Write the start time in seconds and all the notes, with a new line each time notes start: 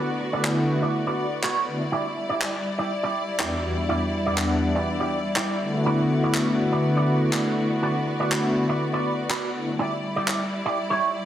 Already playing: B3 F#4 D5
0.20 muted clean electric guitar stroke
0.33 D3 A3 B3 E4 F#4 B4 D5
0.45 clap
0.69 D3 A3 B3 E4 F#4
0.82 F#4 B4 D5
1.07 F#4 B4 D5
1.43 F#4 B4 C#5, clap
1.68 D3 A3 B3 E4 F#4
1.80 muted clean electric guitar stroke
1.92 G3 E4 G4 D5
2.17 muted clean electric guitar stroke
2.29 E4 G4 D5
2.42 clap
2.78 E4 G4 D5
3.03 E4 G4 D5
3.39 E2 G3 B3 D4 E4 F#4 G4 D5, clap
3.64 E2 G3 B3 D4 F#4
3.77 muted clean electric guitar stroke
3.89 E2 G3 B3 D4 E4 F#4 G4 D5
4.14 muted clean electric guitar stroke
4.26 E2 G3 B3 D4 E4 G4 D5 F#5
4.38 clap
4.63 E2 G3 B3 D4 F#4
4.75 E4 G4 D5
5.00 E4 G4 D5
5.36 E4 G4 D5, clap
5.60 D3 A3 B3 E4 F#4
5.74 muted clean electric guitar stroke
5.86 B3 F#4 B4 D5
6.11 muted clean electric guitar stroke
6.23 F#4 B4 D5
6.34 clap
6.72 F#4 B4 D5
6.97 F#4 B4 D5
7.33 D3 A3 B3 E4 F#4 B4 D5, clap
7.58 D3 A3 B3 E4 F#4
7.71 muted clean electric guitar stroke
7.82 D3 A3 B3 E4 F#4 B4 D5
8.07 muted clean electric guitar stroke
8.19 D3 A3 B3 E4 F#4 B4 D5
8.32 clap
8.56 D3 A3 B3 E4 F#4
8.69 F#4 B4 D5
8.93 F#4 B4 D5
9.30 F#4 B4 D5, clap
9.54 D3 A3 B3 E4 F#4
9.67 muted clean electric guitar stroke
9.79 G3 E4 G4 D5
10.04 muted clean electric guitar stroke
10.16 E4 G4 D5
10.28 clap
10.65 E4 G4 D5
10.90 E4 G4 C#5